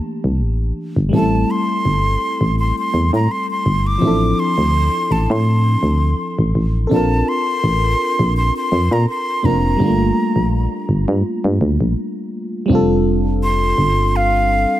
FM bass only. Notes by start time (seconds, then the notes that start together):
0.24 C2
0.41 A1
0.96 G1
1.13 A1
1.85 G1
2.41 A1
2.94 E2
3.13 A2
3.66 G1
4.02 A1
4.58 D2
5.11 A1
5.30 A2
5.83 D2
6.39 A1
6.55 A1
6.91 A#1
7.64 A1
8.19 A#1
8.72 F2
8.91 A#2
9.44 F1
9.80 G1
10.36 A#1
10.89 G1
11.08 G2
11.44 G2
11.61 D2
11.80 A#1
12.70 F1
13.78 G1